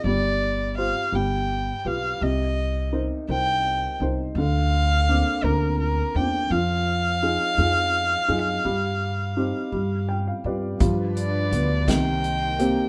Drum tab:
HH |------|------|------|------|
SD |------|------|------|------|
BD |------|------|------|------|

HH |------|xxxxxx|
SD |------|---o--|
BD |------|o--o--|